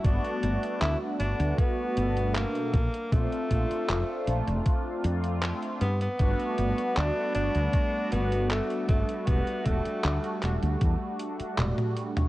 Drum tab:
HH |xxxxx-xxx-xxxxxx|xxxxx-xxx-xxxxxx|xxxxx-xxx-xxxxxx|xxxxxxxxx-xxxxxx|
CP |----x-------x---|----x-------x---|----x-------x---|----x-x-----x---|
T1 |----------------|----------------|----------------|------------oo--|
T2 |----------------|----------------|----------------|---------------o|
BD |o-------o-----o-|o-o-----o-------|o-------o-----o-|o-o-----o-------|